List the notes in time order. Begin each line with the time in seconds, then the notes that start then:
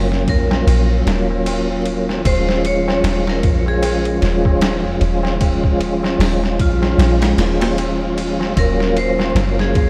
Already playing: F#1 F#3 A#3 C#4 F4
0.12 snare, tabla na
0.28 A#1 A#4, kick, ride, tabla ge
0.46 F#3 A#3
0.51 C#4, snare, tabla na
0.56 F4
0.67 A#1, ride, tabla na
0.90 tabla na
1.06 D#1, snare, ride
1.30 tabla na
1.46 ride, tabla na
1.70 tabla na
1.86 ride
2.09 snare, tabla na
2.20 F3 G#3
2.25 D#1 C#4 C5, kick, ride, tabla na
2.30 F4
2.49 snare, tabla na
2.65 C#5, ride
2.88 snare, tabla na
3.04 D#1, snare, ride, tabla na
3.27 A#4, snare, tabla na
3.43 A#1, kick, ride, tabla ge
3.61 F3 G#3
3.66 C#4 G#4, tabla na
3.71 F4
3.82 ride, tabla na
4.05 ride, tabla na
4.22 D#1, snare, ride
4.45 kick, tabla na
4.61 snare, ride, tabla na
4.84 tabla na, tabla ge
5.01 D#1, ride
5.23 snare, tabla na
5.36 F3 G#3
5.41 C#4, kick, ride, tabla na
5.45 F4
5.63 kick, tabla na
5.81 ride
6.03 snare, tabla na
6.19 D#1, snare, open hi-hat, tabla na
6.42 snare, tabla na
6.59 A#1 F4, kick, ride, tabla ge
6.77 F3 G#3
6.82 C#4, snare, tabla na
6.87 F4
6.98 A#1, snare, ride, tabla na
7.21 snare, ride, tabla na
7.38 D#1, snare, ride
7.61 snare, ride, tabla na
7.78 ride, tabla na
8.00 tabla na
8.18 ride
8.40 snare, tabla na
8.52 F#3 A#3
8.57 D#1 C#4 A#4, kick, ride, tabla na
8.61 F4
8.79 snare, tabla na
8.97 C5, ride
9.19 snare, tabla na
9.35 F#1, snare, ride, tabla na
9.58 G#4, snare, tabla na
9.75 A#1, kick, ride, tabla ge